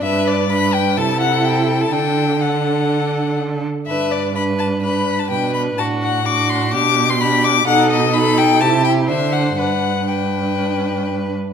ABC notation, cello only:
X:1
M:4/4
L:1/8
Q:1/4=125
K:G
V:1 name="Cello" clef=bass
G,,4 C,4 | D,6- D, z | G,,6 B,,2 | A,,4 B,,4 |
B,,4 C,2 D,2 | G,,6- G,, z |]